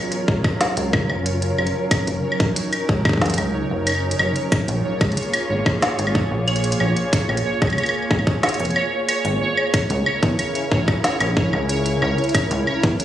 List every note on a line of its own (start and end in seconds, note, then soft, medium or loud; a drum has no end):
0.00 4.48 F#3 medium
0.00 4.48 C#4 medium
0.00 1.88 F4 medium
0.00 4.48 A#4 medium
0.00 13.05 C#5 medium
0.12 closed hi-hat medium
0.28 0.41 C#2 medium
0.28 kick medium
0.44 kick loud
0.44 high woodblock medium
0.61 snare loud
0.61 closed hi-hat medium
0.77 1.02 C#2 loud
0.77 closed hi-hat soft
0.93 kick loud
0.93 high woodblock medium
1.10 1.52 F#1 medium
1.10 high woodblock medium
1.26 closed hi-hat medium
1.42 closed hi-hat medium
1.58 1.71 F#1 medium
1.58 high woodblock medium
1.67 closed hi-hat soft
1.91 4.49 D#4 medium
1.91 kick loud
1.91 closed hi-hat medium
1.91 high woodblock medium
2.07 2.20 F#1 medium
2.07 closed hi-hat medium
2.32 high woodblock soft
2.40 2.53 A#1 medium
2.40 kick loud
2.40 closed hi-hat soft
2.56 closed hi-hat medium
2.73 closed hi-hat medium
2.73 high woodblock medium
2.89 3.01 C#2 medium
2.89 kick medium
3.05 kick loud
3.05 high woodblock medium
3.09 kick medium
3.13 kick medium
3.17 kick medium
3.21 kick soft
3.21 snare loud
3.21 closed hi-hat soft
3.26 kick soft
3.26 closed hi-hat soft
3.30 kick soft
3.30 closed hi-hat medium
3.34 kick soft
3.34 closed hi-hat medium
3.38 3.63 C#2 loud
3.38 closed hi-hat medium
3.38 high woodblock medium
3.71 4.13 F#1 loud
3.87 closed hi-hat medium
3.87 high woodblock soft
3.89 high woodblock soft
3.92 high woodblock soft
3.95 high woodblock soft
3.98 high woodblock soft
4.00 high woodblock soft
4.11 closed hi-hat medium
4.19 4.32 F#1 medium
4.19 high woodblock medium
4.36 closed hi-hat soft
4.52 9.70 A#3 medium
4.52 9.70 F4 medium
4.52 9.70 G#4 medium
4.52 9.70 C#5 medium
4.52 kick loud
4.52 closed hi-hat medium
4.52 high woodblock soft
4.68 4.81 A#1 loud
4.68 closed hi-hat medium
5.01 5.13 C#2 medium
5.01 kick loud
5.01 closed hi-hat soft
5.01 high woodblock soft
5.12 closed hi-hat soft
5.17 closed hi-hat medium
5.23 closed hi-hat soft
5.33 closed hi-hat soft
5.33 high woodblock medium
5.50 5.62 G#1 medium
5.66 kick loud
5.66 high woodblock soft
5.82 snare loud
5.82 closed hi-hat medium
5.99 6.24 G#1 loud
5.99 closed hi-hat soft
6.07 high woodblock soft
6.15 kick loud
6.31 6.74 A#1 loud
6.48 closed hi-hat soft
6.48 high woodblock medium
6.56 closed hi-hat soft
6.64 closed hi-hat medium
6.72 closed hi-hat medium
6.80 6.93 A#1 medium
6.80 high woodblock soft
6.97 closed hi-hat soft
7.13 kick loud
7.13 closed hi-hat medium
7.29 7.42 A#1 medium
7.29 high woodblock soft
7.37 closed hi-hat soft
7.62 7.74 C#2 medium
7.62 kick loud
7.62 closed hi-hat soft
7.62 high woodblock soft
7.67 closed hi-hat soft
7.67 high woodblock soft
7.73 high woodblock soft
7.78 closed hi-hat soft
7.78 high woodblock soft
7.83 closed hi-hat soft
7.83 high woodblock medium
7.89 high woodblock medium
7.94 high woodblock soft
8.03 high woodblock soft
8.11 8.23 G#1 medium
8.11 kick loud
8.11 high woodblock soft
8.19 high woodblock soft
8.27 kick loud
8.43 snare loud
8.43 closed hi-hat medium
8.43 high woodblock soft
8.49 closed hi-hat medium
8.54 closed hi-hat soft
8.60 8.72 F1 medium
8.60 closed hi-hat soft
8.65 closed hi-hat soft
8.70 closed hi-hat soft
8.76 high woodblock medium
9.09 closed hi-hat medium
9.09 high woodblock soft
9.25 9.37 G#1 medium
9.25 closed hi-hat soft
9.57 high woodblock soft
9.74 13.05 C#3 medium
9.74 13.05 C#4 medium
9.74 13.05 E4 medium
9.74 13.05 A#4 medium
9.74 kick loud
9.74 closed hi-hat medium
9.74 high woodblock soft
9.90 10.03 C#2 loud
9.90 closed hi-hat soft
10.06 high woodblock medium
10.23 10.35 E2 medium
10.23 kick loud
10.23 closed hi-hat soft
10.39 closed hi-hat medium
10.39 high woodblock soft
10.55 closed hi-hat soft
10.72 10.84 A#1 medium
10.72 kick loud
10.88 kick loud
10.88 high woodblock soft
11.04 snare loud
11.04 closed hi-hat medium
11.20 11.45 A#1 loud
11.20 closed hi-hat soft
11.20 high woodblock medium
11.37 kick loud
11.53 11.96 C#2 loud
11.53 high woodblock soft
11.69 closed hi-hat medium
11.86 closed hi-hat soft
12.02 12.14 C#2 medium
12.02 high woodblock soft
12.18 closed hi-hat soft
12.24 closed hi-hat soft
12.29 closed hi-hat soft
12.35 kick loud
12.35 closed hi-hat medium
12.35 high woodblock medium
12.51 12.63 C#2 loud
12.51 closed hi-hat medium
12.67 high woodblock soft
12.83 12.96 E2 medium
12.83 kick loud
12.83 closed hi-hat soft
13.00 closed hi-hat medium